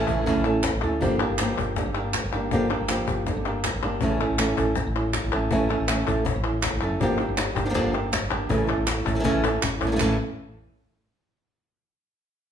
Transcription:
Already playing: nylon-string guitar C#3 E3 A3 C#4 A4
0.07 fretless electric bass A1, nylon-string guitar A3 C#4 E4, cajon bass, clap
0.17 nylon-string guitar E3 A3 C#4 E4
0.22 nylon-string guitar E3 A3 C#4 E4
0.26 nylon-string guitar C#3 E3 A3 C#4 E4 A4, cajon bass, cajon slap
0.36 fretless electric bass A1
0.44 nylon-string guitar A3 C#4 E4 A4, cajon slap
0.63 muted nylon-string guitar stroke, cajon bass, cajon slap, clap
0.73 fretless electric bass A1
0.81 fretless electric bass D2, nylon-string guitar A3 C#4 E4 A4, clap
1.01 fretless electric bass G1, nylon-string guitar D3 F3 A#3 D4 G4, cajon bass
1.20 nylon-string guitar A#3 D4 G4
1.30 fretless electric bass G1
1.38 nylon-string guitar F3 A#3 D4 G4, muted nylon-string guitar stroke, cajon slap, clap
1.57 fretless electric bass G1, nylon-string guitar A#3 D4 G4, cajon bass, clap
1.76 nylon-string guitar D3 F3 A#3 D4 G4, muted nylon-string guitar stroke, cajon bass, cajon slap
1.86 fretless electric bass G1
1.95 nylon-string guitar A#3 D4 G4, cajon slap
2.13 muted nylon-string guitar stroke, cajon slap, clap
2.24 fretless electric bass G1
2.33 fretless electric bass G1, nylon-string guitar A#3 D4 G4, clap
2.51 fretless electric bass G1, nylon-string guitar D3 F3 A#3 D4 G4, cajon bass
2.69 nylon-string guitar A#3 D4 G4, cajon slap
2.81 fretless electric bass G1
2.88 nylon-string guitar F3 A#3 D4 G4, muted nylon-string guitar stroke, cajon slap, clap
3.07 fretless electric bass G1, nylon-string guitar A#3 D4 G4, cajon bass, clap
3.26 nylon-string guitar D3 F3 A#3 D4 G4, muted nylon-string guitar stroke, cajon bass, cajon slap
3.37 fretless electric bass G1
3.45 nylon-string guitar A#3 D4 G4
3.63 muted nylon-string guitar stroke, cajon bass, cajon slap, clap
3.74 fretless electric bass G1
3.83 fretless electric bass G1, nylon-string guitar A#3 D4 G4, clap
4.01 fretless electric bass A1, nylon-string guitar C#3 E3 A3 C#4 E4 A4, cajon bass
4.20 nylon-string guitar A3 C#4 E4 A4, cajon slap
4.30 fretless electric bass A1
4.38 nylon-string guitar E3 A3 C#4 E4 A4, cajon slap, clap
4.57 fretless electric bass A1, nylon-string guitar A3 C#4 E4 A4, cajon bass
4.75 muted nylon-string guitar stroke, cajon bass, cajon slap
4.87 fretless electric bass A1
4.95 nylon-string guitar A3 C#4 E4, cajon slap
5.14 cajon slap, clap
5.24 fretless electric bass A1
5.32 fretless electric bass A1, nylon-string guitar A3 C#4 A4
5.51 fretless electric bass A1, nylon-string guitar C#3 E3 A3 C#4 E4 A4, cajon bass
5.69 nylon-string guitar A3 C#4 E4 A4
5.80 fretless electric bass A1
5.88 nylon-string guitar E3 A3 C#4 E4 A4, cajon slap, clap
6.06 fretless electric bass A1, nylon-string guitar A3 C#4 E4 A4, cajon bass
6.25 muted nylon-string guitar stroke, cajon bass
6.36 fretless electric bass A1
6.43 nylon-string guitar A3 C#4 E4, cajon slap
6.63 cajon bass, cajon slap, clap
6.73 fretless electric bass A1
6.81 fretless electric bass F#1, nylon-string guitar A3 C#4 A4, clap
7.00 fretless electric bass G1, nylon-string guitar D3 F3 A#3 D4 G4, cajon bass
7.20 nylon-string guitar A#3 D4 G4, cajon slap
7.28 fretless electric bass G1
7.36 nylon-string guitar F3 A#3 D4 G4, muted nylon-string guitar stroke, cajon slap, clap
7.55 fretless electric bass G1, nylon-string guitar A#3 D4 G4, cajon bass, clap
7.65 nylon-string guitar F3 A#3 D4 G4
7.70 nylon-string guitar F3 A#3 D4 G4
7.74 nylon-string guitar D3 F3 A#3 D4 G4, muted nylon-string guitar stroke, cajon bass, cajon slap
7.84 fretless electric bass G1
7.93 nylon-string guitar A#3 D4 G4
8.12 muted nylon-string guitar stroke, cajon bass, cajon slap, clap
8.22 fretless electric bass G1
8.31 fretless electric bass G1, nylon-string guitar A#3 D4 G4
8.49 fretless electric bass A1, nylon-string guitar C#3 E3 A3 C#4 E4 A4, cajon bass
8.67 nylon-string guitar A3 C#4 E4 A4, cajon slap
8.78 fretless electric bass A1
8.86 nylon-string guitar E3 A3 C#4 E4, muted nylon-string guitar stroke, cajon slap, clap
9.05 fretless electric bass A1, nylon-string guitar A3 C#4 E4 A4, cajon bass, clap
9.15 nylon-string guitar E3 A3 C#4 A4
9.20 nylon-string guitar E3 A3 C#4 A4
9.24 nylon-string guitar C#3 E3 A3 C#4 A4, cajon bass
9.34 fretless electric bass A1
9.44 nylon-string guitar A3 C#4 E4 A4, cajon slap
9.62 fretless electric bass G1, muted nylon-string guitar stroke, cajon bass, clap
9.80 fretless electric bass A1, nylon-string guitar A3 C#4 E4 A4, cajon bass, clap
9.87 nylon-string guitar C#3 E3 A3 C#4 E4 A4
9.92 nylon-string guitar C#3 E3 A3 C#4 E4 A4
9.96 nylon-string guitar C#3 E3 A3 C#4 E4 A4, clap
10.00 fretless electric bass A1, nylon-string guitar A2 C#3 E3 A3 C#4 E4 A4, cajon bass

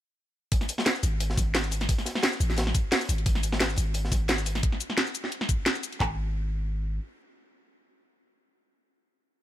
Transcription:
0.52 kick, closed hi-hat
0.61 snare, closed hi-hat
0.69 closed hi-hat, cabasa
0.78 snare
0.86 snare, closed hi-hat
0.95 cabasa
1.03 808-style bass G#1, closed hi-hat, cabasa
1.20 closed hi-hat
1.30 snare
1.37 808-style bass G#1, kick, closed hi-hat, cabasa
1.55 snare, closed hi-hat
1.64 closed hi-hat, cabasa
1.71 closed hi-hat, cabasa
1.81 snare, closed hi-hat
1.89 kick, closed hi-hat
1.98 snare, closed hi-hat
2.06 snare, closed hi-hat, cabasa
2.15 snare
2.23 snare, closed hi-hat
2.33 cabasa
2.40 808-style bass A1, closed hi-hat, open hi-hat, cabasa
2.50 snare, closed hi-hat
2.56 snare, closed hi-hat
2.67 snare
2.75 kick, closed hi-hat, cabasa
2.92 snare, closed hi-hat, open hi-hat
3.01 closed hi-hat, cabasa
3.09 808-style bass G#1, closed hi-hat, cabasa
3.18 closed hi-hat
3.26 kick, closed hi-hat
3.35 snare, closed hi-hat
3.43 closed hi-hat, cabasa
3.52 snare
3.60 snare, closed hi-hat
3.70 cabasa
3.76 808-style bass G#1, closed hi-hat, cabasa
3.94 closed hi-hat
4.05 snare
4.12 808-style bass G#1, kick, closed hi-hat, cabasa
4.28 snare, closed hi-hat
4.38 closed hi-hat, cabasa
4.46 closed hi-hat, cabasa
4.55 snare, closed hi-hat
4.63 kick, closed hi-hat
4.72 snare
4.80 closed hi-hat, cabasa
4.90 snare
4.98 snare, closed hi-hat
5.07 cabasa
5.15 open hi-hat, cabasa
5.24 snare
5.32 closed hi-hat
5.41 snare
5.49 kick, closed hi-hat, cabasa
5.66 snare, closed hi-hat
5.75 closed hi-hat, cabasa
5.83 closed hi-hat, cabasa
5.92 closed hi-hat
6.00 808-style bass G#1, kick, clap

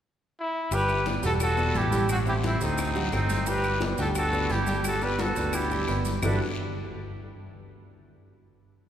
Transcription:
0.40 trumpet E4
0.71 fingered electric bass G1, grand piano G3 G4 G5, flute G4, trumpet B4, high bongo, high conga, long guiro, maracas
0.89 high bongo, high conga, claves, maracas
1.05 grand piano B3 B4 D5, high bongo, high conga, short guiro, maracas
1.22 fingered electric bass E1, grand piano G3 G4 G5, flute F#4, trumpet A4, high bongo, high conga, short guiro, maracas
1.40 flute F#4, trumpet A4, high bongo, long guiro, claves, maracas
1.57 grand piano B3 B4 D5, high bongo, high conga, maracas
1.74 fingered electric bass A1, flute E4, trumpet G4, high bongo, low bongo, high conga, short guiro, maracas
1.91 grand piano G3 G4 G5, high conga, short guiro, maracas
2.09 flute C4, trumpet F#4, high bongo, high conga, long guiro, claves, maracas
2.26 grand piano C4 C5 E5, flute E4, trumpet G4, high bongo, high conga, maracas
2.43 flute C4, trumpet E4, high bongo, high conga, short guiro, maracas
2.61 fingered electric bass D2, grand piano A3 A4 C5, flute C4, trumpet D#4, high bongo, high conga, short guiro, maracas
2.78 high bongo, high conga, long guiro, claves, maracas
2.95 grand piano F#3 F#4 F#5, high bongo, high conga, maracas
3.11 fingered electric bass G1, grand piano A3 A4 C5, flute C4, trumpet D#4, high bongo, low bongo, high conga, short guiro, claves, maracas
3.29 high conga, short guiro, maracas
3.46 grand piano G3 G4 G5, flute G4, trumpet B4, high bongo, high conga, long guiro, maracas
3.64 high bongo, high conga, claves, maracas
3.80 grand piano B3 B4 D5, high bongo, high conga, short guiro, maracas
3.97 fingered electric bass D2, grand piano G3 G4 G5, flute F#4, trumpet A4, high bongo, high conga, short guiro, maracas
4.15 flute F#4, trumpet A4, high bongo, high conga, long guiro, claves, maracas
4.32 grand piano B3 B4 D5, high bongo, high conga, maracas
4.50 fingered electric bass G1, flute E4, trumpet G4, high bongo, low bongo, high conga, short guiro, maracas
4.67 grand piano G3 G4 G5, high conga, short guiro, maracas
4.84 flute F#4, trumpet A4, high bongo, high conga, long guiro, claves, maracas
5.01 grand piano B3 B4 D5, flute G4, trumpet B4, high bongo, high conga, maracas
5.18 flute F#4, trumpet A4, high bongo, high conga, short guiro, maracas
5.35 fingered electric bass D2, grand piano B3 B4 D5, high bongo, high conga, short guiro, maracas
5.53 flute E4, trumpet G4, high bongo, high conga, long guiro, claves, maracas
5.71 grand piano G3 G4 G5, high bongo, high conga, maracas
5.88 fingered electric bass G1, grand piano B3 B4 D5, high bongo, low bongo, high conga, short guiro, claves, maracas
6.05 high conga, short guiro, maracas
6.22 fingered electric bass G1, grand piano G3 D4 E4 F#4 G4 A4, trumpet D4, flute B4, low bongo, low conga, long guiro, claves, maracas

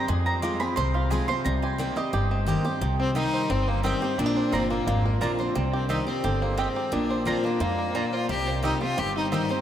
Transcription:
Already playing: five-string banjo C4
0.08 steel-string acoustic guitar F2, upright bass F2, five-string banjo G#4, mandolin G#5
0.26 five-string banjo C4, mandolin A#5
0.42 steel-string acoustic guitar F3 G#3 C4 F4, five-string banjo F4, mandolin D6
0.60 steel-string acoustic guitar C4 F4, five-string banjo G#4, mandolin B5
0.76 upright bass C2, steel-string acoustic guitar C3, five-string banjo C5, mandolin C6
0.94 five-string banjo F4, mandolin F5
1.10 steel-string acoustic guitar F3 G#3 C4 F4, five-string banjo G#4, mandolin G#5
1.28 steel-string acoustic guitar C4 F4, five-string banjo C5, mandolin C6
1.44 upright bass C2, steel-string acoustic guitar C3, five-string banjo G3, mandolin A#5
1.62 five-string banjo G4, mandolin G#5
1.78 steel-string acoustic guitar D#3 A#3 C4 G4, five-string banjo G3, mandolin G5
1.96 steel-string acoustic guitar C4 G4, five-string banjo G4, mandolin D#5
2.13 upright bass G1, steel-string acoustic guitar G2, five-string banjo G4
2.31 five-string banjo C4
2.46 steel-string acoustic guitar D#3 A#3 C4 G4, five-string banjo G4
2.65 steel-string acoustic guitar C4 G4, five-string banjo G4
2.81 upright bass C2, steel-string acoustic guitar C3, five-string banjo G4
3.00 five-string banjo C4, fiddle C4
3.15 steel-string acoustic guitar D#3 G3 C4 G4, mandolin C4 G4 D#5 G5, fiddle D#4, five-string banjo G4
3.34 five-string banjo C5
3.50 upright bass G1, steel-string acoustic guitar G2, fiddle C4, five-string banjo C4
3.68 fiddle A#3, five-string banjo G4
3.83 steel-string acoustic guitar D#3 G3 C4 G4, mandolin C4 G4 D#5 G5, fiddle C4, five-string banjo C5
4.02 steel-string acoustic guitar C4 G4, five-string banjo G4
4.18 upright bass A#1, steel-string acoustic guitar A#2, five-string banjo C4, fiddle D4
4.26 five-string banjo D4
4.36 five-string banjo C5
4.52 upright bass G1, steel-string acoustic guitar F3 A#3 D4 F4, mandolin A#3 F4 D5 A#5, fiddle C4, five-string banjo A#4
4.70 fiddle A#3, five-string banjo D4, steel-string acoustic guitar D4 F4
4.87 upright bass G#1, steel-string acoustic guitar F2, five-string banjo F4
5.06 five-string banjo A#4
5.21 upright bass A#1, steel-string acoustic guitar F3 A#3 D4 F4, mandolin A#3 F4 D5 A#5, five-string banjo D4
5.39 steel-string acoustic guitar D4 F4, five-string banjo C5
5.55 upright bass C2, steel-string acoustic guitar C3, five-string banjo C4
5.73 fiddle C4, five-string banjo G4
5.89 steel-string acoustic guitar D#3 G3 C4 G4, mandolin C4 G4 D#5 G5, fiddle D#4, five-string banjo G4
6.07 fiddle C4, steel-string acoustic guitar C4 G4, five-string banjo C5
6.24 upright bass G1, steel-string acoustic guitar D3, five-string banjo G4
6.42 fiddle A#3, five-string banjo C5
6.57 steel-string acoustic guitar G#3, mandolin C4 G4 D#5 G5, fiddle C4, five-string banjo G4
6.76 five-string banjo G4
6.92 upright bass A#1, steel-string acoustic guitar A#2, five-string banjo D4, fiddle D4
7.10 five-string banjo C5
7.25 steel-string acoustic guitar F3 A#3 D4 F4, mandolin A#3 F4 D5 A#5, fiddle C4, five-string banjo A#4
7.44 fiddle A#3, five-string banjo D4, steel-string acoustic guitar D4 F4
7.60 upright bass F2, steel-string acoustic guitar G#2, five-string banjo F4
7.79 five-string banjo A#4
7.95 steel-string acoustic guitar A#2, mandolin A#3 F4 D5 A#5, five-string banjo D4
8.13 fiddle F4, five-string banjo C5
8.29 upright bass C2, steel-string acoustic guitar C3, five-string banjo C4, fiddle G4
8.47 five-string banjo C5
8.63 steel-string acoustic guitar D#3 G3 C4 G4, mandolin C4 G4 D#5 G5, fiddle D#4, five-string banjo G4
8.81 five-string banjo C4, steel-string acoustic guitar C4 G4, fiddle F4
8.98 upright bass G1, steel-string acoustic guitar G2, five-string banjo G4, fiddle G4
9.16 fiddle D#4, five-string banjo G4
9.32 steel-string acoustic guitar D#3 G3 C4 G4, mandolin C4 G4 D#5 G5, five-string banjo C4, fiddle D#4
9.49 steel-string acoustic guitar C4 G4, five-string banjo C5

